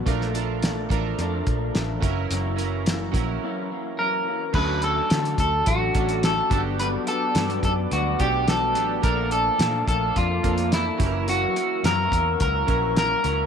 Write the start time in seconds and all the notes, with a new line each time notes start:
0.05 A#1 A#2 F3 A3 D4 F4 A#4, kick, closed hi-hat
0.21 snare
0.34 F3 A3 D4 F4 A4 A#4, closed hi-hat
0.61 A#2 F3 A3 D4, snare, closed hi-hat
0.89 A1 A3 D4 F4 A4 A#4, kick, closed hi-hat
0.93 F3
1.19 F2 A#2 F3 A3 D4, closed hi-hat
1.47 A#1 F3 A3 D4, kick, closed hi-hat
1.74 A1 A#2 F3 A3 D4, snare, closed hi-hat
2.00 F#1 F#3 A#3 C#4 E4 A#4, kick, closed hi-hat
2.06 E3
2.30 F#1 F#2 E3 A#3 C#4, closed hi-hat
2.56 F#3 C#4 E4 A#4, closed hi-hat
2.61 E3 A#3
2.86 F#2 E3 A#3 C#4, snare, closed hi-hat
3.12 A#1 F#3 C#4 E4 A#4, kick, closed hi-hat
3.16 E3 A#3
3.42 F#2 E3 A#3 C#4
3.70 E3 A#3 C#4
3.98 F#2 E3 A#3 C#4 A#4
4.26 A#3 C#4
4.30 E3
4.53 D2 D3 F#3 A3 C#4 D4 A4 B4 F#5 A5 D6, kick, crash
4.82 A3 C#4 A4, closed hi-hat
4.86 F#3
5.10 D3 F#3 A3 C#4, snare, closed hi-hat
5.25 closed hi-hat
5.38 D2 A3 C#4 A4, kick, closed hi-hat
5.43 F#3
5.66 A1 D3 F#3 A3 C#4 F#4, kick, closed hi-hat
5.94 A1 F#3 A3 C#4 D4 A4, kick, closed hi-hat
6.09 closed hi-hat
6.23 D3 F#3 A3 C#4 A4, snare, closed hi-hat
6.50 G1 B3 D4 F#4 G4 A4 B4 D5, kick, closed hi-hat
6.54 F#3
6.79 G2 F#3 B3 D4 B4, closed hi-hat
7.07 F#3 B3 D4 A4, closed hi-hat
7.35 G2 F#3 B3 D4, snare, closed hi-hat
7.50 closed hi-hat
7.63 F#2 F#3 B3 D4 A4, kick, closed hi-hat
7.91 D2 G2 F#3 B3 D4 F#4, closed hi-hat
8.18 B1 F#3 A3 B3 D4 F#4 G4, kick, closed hi-hat
8.26 B3
8.47 G2 F#3 B3 D4 A4, snare, closed hi-hat
8.74 A1 F#3 B3 D4 G4, closed hi-hat
9.02 A#1 A#2 F3 A3 A#3 D4 A4 A#4 F5 A5, kick, closed hi-hat
9.29 F3 A3 D4 A4, closed hi-hat
9.59 A#2 F3 A3 D4, snare, closed hi-hat
9.87 A#1 F3 A3 D4 A4, kick, closed hi-hat
10.15 F2 A#2 F3 A3 D4 F4, kick, closed hi-hat
10.43 F2 F3 A3 A#3 D4 A4, kick, closed hi-hat
10.58 closed hi-hat
10.71 A#2 F3 A3 D4 E4, snare, closed hi-hat
10.97 F#1 F#3 A#3 C#4 E4 G4 A#4 F#5 C#6 E6, kick, closed hi-hat
11.03 E3 A#4
11.27 F#2 E3 A#3 C#4 F#4, closed hi-hat
11.55 E3 A#3 C#4, closed hi-hat
11.83 F#2 E3 A#3 C#4 A#4, snare, closed hi-hat
12.11 E2 E3 A#3 C#4, kick, closed hi-hat
12.38 C#2 F#2 E3 A#3 C#4, kick, closed hi-hat
12.42 A#4
12.66 A#1 F#3 A#3 C#4 E4 A#4, kick, closed hi-hat
12.70 E3
12.95 F#2 E3 A#3 C#4 A#4, snare, closed hi-hat
13.23 C#2 E3 F#3 A#3 C#4 E4 A#4, closed hi-hat